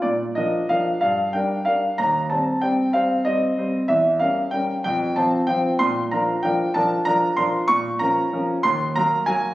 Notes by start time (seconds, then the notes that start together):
0.02 A#2 D5
0.35 F3 D4 A#4 D#5
0.69 F3 D4 A#4 F5
1.01 G2 F5
1.33 G3 D4 A#4 G5
1.65 G3 D4 A#4 F5
1.98 D#2 A#5
2.30 G3 C4 C5 A5
2.61 G3 C4 C5 G5
2.93 G3 C4 C5 F5
3.25 G3 C4 C5 D#5
3.58 G3 C4 C5
3.88 E2 E5
4.19 G3 C#4 A#4 F5
4.51 G3 C#4 A#4 G5
4.84 F2 G5
5.16 F3 C4 C5 A5
5.47 F3 C4 C5 G5
5.79 A#2 C6
6.11 F3 D4 A#4 A#5
6.43 F3 D4 A#4 G5
6.74 F3 D4 A#4 A5
7.05 F3 D4 A#4 A#5
7.37 F3 D4 A#4 C6
7.68 A#2 C#6
7.99 F3 C#4 A#4 A#5
8.33 F3 C#4 A#4
8.63 D#2 C6
8.96 F#3 A#3 A#4 A#5
9.26 F#3 A#3 A#4 G#5